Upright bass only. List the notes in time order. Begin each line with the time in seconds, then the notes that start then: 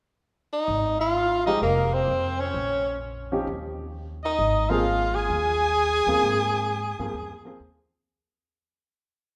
0.68 G#1
1.62 F1
2.08 F2
2.54 A#1
3.47 D#2
4.39 G#1
5.30 D#2
6.07 D#2
6.21 G#2
6.99 G2
7.13 D#2
7.60 D#2